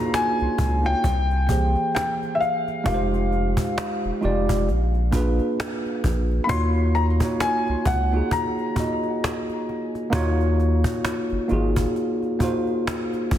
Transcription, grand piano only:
Already playing: A#5
0.14 G#5
0.86 G5
1.95 G5
2.35 E5
2.40 F5
2.86 F5
6.44 B5
6.49 C6
6.95 A#5
7.41 G#5
7.87 F#5
8.32 A#5

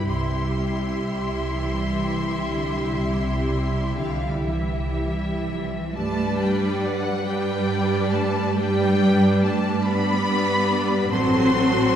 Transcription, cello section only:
0.07 C3
1.55 E3
2.52 D3
2.99 C3
3.96 D3 F3
4.44 E3
5.46 F3
5.93 A3
6.38 G3
6.82 F#3
7.27 G3
8.13 A3
8.56 G3
9.43 A3
9.86 B3
11.11 C4

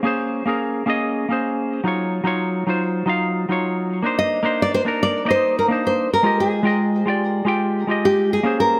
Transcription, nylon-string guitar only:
4.19 D#5
4.62 D5
4.74 C5
5.03 D5
5.30 C5
5.59 A#4
5.87 C5
6.13 A#4
6.40 G#4
7.09 G4
8.05 G4
8.33 G#4
8.60 A#4

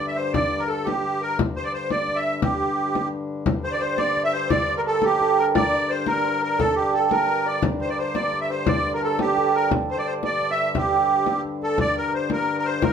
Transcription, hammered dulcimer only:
3.64 C5
3.74 D5
3.82 C5
3.99 D5
4.25 E5
4.34 C5
4.52 D5
4.78 A#4
4.86 A4
5.05 G4
5.21 A4
5.38 A#4
5.55 D5
5.73 D5
6.08 A#4
6.25 C5
6.42 A#4
6.59 A4
6.78 G4
6.93 A4
7.11 A#4
7.46 D5
7.80 C5
7.89 D5
7.99 C5
8.15 D5
8.50 C5
8.68 D5
8.94 A#4
9.02 A4
9.19 G4
9.37 A4
9.90 C5
9.98 D5
10.25 D5
10.50 E5
10.76 G4

